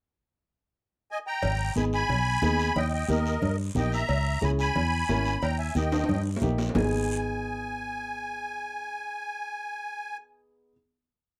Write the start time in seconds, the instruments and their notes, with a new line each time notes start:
1.11 accordion D#5 G#5
1.27 accordion G5 A#5
1.43 fingered electric bass G#1, cowbell, high conga, low conga, long guiro
1.76 fingered electric bass G#1, upright piano B3 D#4 G#4, accordion G#5 B5, high conga, short guiro
1.93 accordion G#5 B5, short guiro
2.09 fingered electric bass B1, cowbell, high conga, low conga, long guiro
2.42 fingered electric bass D#2, upright piano B3 D#4 G#4, high conga, low conga, short guiro
2.59 short guiro
2.76 fingered electric bass D#2, accordion D#5 G5, cowbell, high conga, low conga, long guiro
2.93 accordion D#5 G5
3.09 fingered electric bass D#2, upright piano A#3 D#4 G4, accordion A#4 D#5, high conga, short guiro
3.26 short guiro
3.42 fingered electric bass G2, cowbell, high conga, low conga, long guiro
3.75 fingered electric bass A#1, upright piano A#3 D#4 G4, accordion D#5 G5, high conga, low conga, short guiro
3.92 accordion E5 A#5, short guiro
4.09 fingered electric bass C#2, cowbell, high conga, long guiro
4.41 fingered electric bass C#2, upright piano C#4 E4 G#4, accordion G#5 B5, high conga, short guiro
4.59 accordion G#5 B5, short guiro
4.76 fingered electric bass E2, cowbell, high conga, low conga, long guiro
5.09 fingered electric bass G#1, upright piano C#4 E4 A#4, high conga, low timbale, short guiro
5.26 short guiro
5.42 fingered electric bass D#2, accordion G5 A#5, cowbell, high conga, long guiro
5.59 accordion E5 G#5
5.75 fingered electric bass D#2, upright piano A#3 D#4 G4, accordion D#5 G5, high conga, short guiro
5.92 high timbale, short guiro
6.04 high timbale
6.09 fingered electric bass G2, cowbell, high conga, low conga, long guiro
6.15 high timbale
6.36 low timbale
6.42 fingered electric bass A#1, upright piano A#3 D#4 G4, high conga, low conga, short guiro
6.58 low timbale, short guiro
6.69 low timbale
6.74 fingered electric bass G#1, upright piano B3 D#4, accordion G#5, low conga, low timbale, long guiro
6.78 upright piano G#4